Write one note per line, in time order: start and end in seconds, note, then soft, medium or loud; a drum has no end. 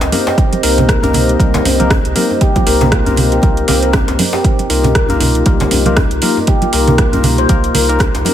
0.00 0.10 C2 loud
0.00 4.41 C4 medium
0.00 8.34 G4 medium
0.00 4.41 C5 medium
0.00 4.41 D#5 loud
0.00 closed hi-hat soft
0.00 djembe slap loud
0.12 0.28 A#3 loud
0.12 0.28 C4 medium
0.12 0.26 C4 medium
0.12 0.28 D#4 medium
0.12 0.28 G4 medium
0.12 0.28 A#4 loud
0.12 open hi-hat medium
0.12 muted conga soft
0.12 high conga medium
0.12 djembe tone medium
0.27 0.37 G4 medium
0.27 djembe slap loud
0.38 0.51 C4 medium
0.38 kick loud
0.38 closed hi-hat medium
0.53 closed hi-hat soft
0.53 muted conga soft
0.53 high conga loud
0.63 0.99 C2 loud
0.63 1.00 A#3 loud
0.63 1.00 C4 medium
0.63 1.00 D#4 medium
0.63 0.71 D#4 medium
0.63 1.00 G4 medium
0.63 1.00 A#4 loud
0.63 open hi-hat medium
0.78 0.88 A#3 medium
0.78 closed hi-hat soft
0.78 mid tom medium
0.78 muted conga soft
0.78 djembe tone medium
0.78 low conga loud
0.89 1.03 A#4 medium
0.89 kick loud
0.89 cross-stick loud
0.89 closed hi-hat medium
1.03 1.36 C2 loud
1.03 1.37 A#3 medium
1.03 1.37 C4 medium
1.03 1.37 D#4 medium
1.03 1.37 G4 medium
1.03 1.37 A#4 loud
1.03 closed hi-hat soft
1.03 muted conga medium
1.03 djembe bass medium
1.13 open hi-hat medium
1.13 mid tom medium
1.13 djembe tone medium
1.13 low conga loud
1.29 closed hi-hat soft
1.29 muted conga soft
1.39 1.61 C2 medium
1.39 1.53 G3 medium
1.39 1.76 A#3 medium
1.39 1.76 C4 medium
1.39 1.76 D#4 medium
1.39 1.76 G4 medium
1.39 1.76 A#4 medium
1.39 kick loud
1.39 closed hi-hat medium
1.39 high conga medium
1.54 1.64 C4 medium
1.54 closed hi-hat soft
1.54 djembe slap loud
1.54 low conga loud
1.65 2.00 C2 medium
1.65 1.73 D#4 medium
1.65 open hi-hat medium
1.65 muted conga medium
1.65 high conga medium
1.65 djembe tone loud
1.80 1.92 A#3 loud
1.80 1.92 C4 medium
1.80 1.92 D#4 medium
1.80 1.92 G4 medium
1.80 1.92 A#4 loud
1.80 closed hi-hat soft
1.80 high conga loud
1.80 low conga medium
1.90 kick loud
1.90 cross-stick loud
1.90 closed hi-hat medium
1.90 muted conga soft
1.90 djembe tone loud
2.05 2.14 C2 loud
2.05 closed hi-hat soft
2.16 2.32 A#3 loud
2.16 2.29 A#3 medium
2.16 2.32 C4 medium
2.16 2.32 D#4 medium
2.16 2.32 G4 medium
2.16 2.32 A#4 loud
2.16 open hi-hat medium
2.16 muted conga soft
2.16 high conga loud
2.31 2.40 D#4 medium
2.31 djembe tone medium
2.41 2.49 G4 loud
2.41 kick loud
2.41 closed hi-hat medium
2.56 2.62 F4 medium
2.56 kick medium
2.56 closed hi-hat soft
2.56 muted conga soft
2.56 high conga loud
2.66 3.02 C2 loud
2.66 3.03 A#3 medium
2.66 3.03 C4 medium
2.66 3.03 D#4 medium
2.66 3.03 G4 medium
2.66 3.03 A#4 loud
2.66 2.81 A#4 medium
2.66 open hi-hat medium
2.81 2.91 A#3 medium
2.81 closed hi-hat soft
2.81 mid tom medium
2.81 djembe slap medium
2.81 muted conga soft
2.81 djembe tone medium
2.81 low conga loud
2.92 3.05 F4 loud
2.92 kick loud
2.92 cross-stick loud
2.92 closed hi-hat medium
3.06 3.40 C2 loud
3.06 3.40 A#3 medium
3.06 3.40 C4 medium
3.06 3.40 D#4 medium
3.06 3.40 G4 medium
3.06 3.40 A#4 loud
3.06 closed hi-hat soft
3.06 muted conga soft
3.06 djembe bass medium
3.16 open hi-hat medium
3.16 mid tom medium
3.16 djembe tone medium
3.16 low conga loud
3.32 3.42 G4 medium
3.32 closed hi-hat soft
3.32 muted conga soft
3.42 3.64 C2 medium
3.42 3.66 A#3 medium
3.42 3.66 C4 medium
3.42 3.66 D#4 medium
3.42 3.66 G4 medium
3.42 3.66 A#4 medium
3.42 kick loud
3.42 closed hi-hat medium
3.42 djembe tone medium
3.42 high conga medium
3.57 closed hi-hat soft
3.68 4.04 C2 medium
3.68 3.79 A#3 medium
3.68 3.79 C4 medium
3.68 3.82 C4 loud
3.68 3.79 D#4 medium
3.68 3.79 G4 medium
3.68 3.79 A#4 loud
3.68 open hi-hat medium
3.68 muted conga soft
3.68 djembe slap medium
3.68 high conga medium
3.68 low conga loud
3.83 4.04 A#3 medium
3.83 4.04 C4 medium
3.83 4.04 D#4 medium
3.83 4.04 G4 medium
3.83 4.04 A#4 medium
3.83 3.93 A#4 medium
3.83 closed hi-hat soft
3.93 kick loud
3.93 cross-stick loud
3.93 closed hi-hat medium
3.93 muted conga soft
3.93 djembe tone loud
4.08 4.17 C2 loud
4.08 4.21 A#3 medium
4.08 4.21 C4 medium
4.08 4.21 D#4 medium
4.08 4.21 G4 medium
4.08 4.21 A#4 medium
4.08 closed hi-hat soft
4.08 djembe slap loud
4.19 4.32 C4 medium
4.19 open hi-hat medium
4.19 muted conga medium
4.19 djembe tone medium
4.19 high conga medium
4.33 4.44 G4 medium
4.33 djembe slap loud
4.44 4.58 C4 medium
4.44 8.34 D#4 medium
4.44 8.34 F4 medium
4.44 kick loud
4.44 closed hi-hat medium
4.59 closed hi-hat soft
4.59 muted conga soft
4.59 high conga medium
4.70 5.05 C2 loud
4.70 5.07 A#3 loud
4.70 5.06 D#4 medium
4.70 4.78 D#4 medium
4.70 5.06 F4 medium
4.70 5.06 G4 medium
4.70 5.06 A#4 loud
4.70 open hi-hat medium
4.84 4.95 A#3 medium
4.84 closed hi-hat soft
4.84 mid tom medium
4.84 muted conga soft
4.84 djembe tone medium
4.84 low conga loud
4.95 5.09 A#4 medium
4.95 kick loud
4.95 cross-stick loud
4.95 closed hi-hat medium
5.09 5.43 C2 loud
5.09 5.44 A#3 medium
5.09 5.44 D#4 medium
5.09 5.44 F4 medium
5.09 5.44 G4 medium
5.09 5.44 A#4 loud
5.09 closed hi-hat soft
5.09 muted conga medium
5.09 djembe bass medium
5.20 open hi-hat medium
5.20 mid tom medium
5.20 djembe tone medium
5.20 low conga medium
5.35 closed hi-hat soft
5.35 muted conga soft
5.46 5.67 C2 medium
5.46 5.60 G3 medium
5.46 5.83 A#3 medium
5.46 5.83 D#4 medium
5.46 5.83 F4 medium
5.46 5.83 G4 medium
5.46 5.83 A#4 medium
5.46 kick loud
5.46 closed hi-hat medium
5.46 high conga medium
5.60 5.71 C4 medium
5.60 closed hi-hat soft
5.60 djembe slap loud
5.60 low conga loud
5.71 6.07 C2 medium
5.71 5.80 D#4 medium
5.71 open hi-hat medium
5.71 muted conga soft
5.71 djembe tone medium
5.71 high conga medium
5.85 5.99 A#3 medium
5.85 5.99 D#4 medium
5.85 5.99 F4 medium
5.85 5.99 G4 medium
5.85 5.99 A#4 loud
5.85 closed hi-hat soft
5.85 high conga loud
5.85 low conga medium
5.96 kick loud
5.96 cross-stick loud
5.96 closed hi-hat medium
5.96 muted conga soft
5.96 djembe tone loud
6.11 6.20 C2 loud
6.11 closed hi-hat soft
6.22 6.38 A#3 loud
6.22 6.36 A#3 medium
6.22 6.38 D#4 medium
6.22 6.38 F4 medium
6.22 6.38 G4 medium
6.22 6.38 A#4 loud
6.22 open hi-hat medium
6.22 muted conga soft
6.22 high conga medium
6.37 6.47 D#4 medium
6.37 djembe tone medium
6.47 6.56 G4 loud
6.47 kick loud
6.47 closed hi-hat medium
6.62 6.68 F4 medium
6.62 closed hi-hat soft
6.62 muted conga medium
6.62 high conga medium
6.73 7.09 C2 loud
6.73 7.10 A#3 loud
6.73 7.10 D#4 medium
6.73 7.10 F4 medium
6.73 7.10 G4 medium
6.73 7.10 A#4 loud
6.73 6.87 A#4 medium
6.73 open hi-hat medium
6.88 6.98 A#3 medium
6.88 closed hi-hat soft
6.88 mid tom medium
6.88 muted conga soft
6.88 djembe tone medium
6.88 low conga loud
6.98 7.12 F4 loud
6.98 kick loud
6.98 cross-stick loud
6.98 closed hi-hat medium
7.13 7.46 C2 loud
7.13 7.47 A#3 medium
7.13 7.47 D#4 medium
7.13 7.47 F4 medium
7.13 7.47 G4 medium
7.13 7.47 A#4 loud
7.13 closed hi-hat soft
7.13 muted conga medium
7.13 djembe bass medium
7.23 open hi-hat medium
7.23 mid tom medium
7.23 djembe tone medium
7.23 low conga loud
7.38 7.49 C5 loud
7.38 closed hi-hat soft
7.38 muted conga soft
7.49 7.71 C2 medium
7.49 7.86 A#3 medium
7.49 7.86 D#4 medium
7.49 7.86 F4 medium
7.49 7.86 G4 medium
7.49 7.86 A#4 loud
7.49 kick loud
7.49 closed hi-hat medium
7.49 high conga medium
7.64 closed hi-hat soft
7.74 8.10 C2 medium
7.74 7.88 A#4 medium
7.74 open hi-hat medium
7.74 muted conga medium
7.74 high conga medium
7.74 low conga loud
7.89 8.02 A#3 loud
7.89 8.02 D#4 medium
7.89 8.02 F4 medium
7.89 8.02 G4 medium
7.89 8.02 A#4 loud
7.89 closed hi-hat soft
7.99 kick loud
7.99 cross-stick loud
7.99 closed hi-hat medium
7.99 muted conga soft
7.99 djembe tone medium
8.15 8.24 C2 loud
8.15 closed hi-hat soft
8.15 djembe slap medium
8.25 8.34 A#3 loud
8.25 8.34 C4 medium
8.25 8.34 D#4 medium
8.25 8.34 F4 medium
8.25 8.34 G4 medium
8.25 8.34 A#4 loud
8.25 open hi-hat medium
8.25 muted conga soft
8.25 djembe tone medium
8.25 high conga medium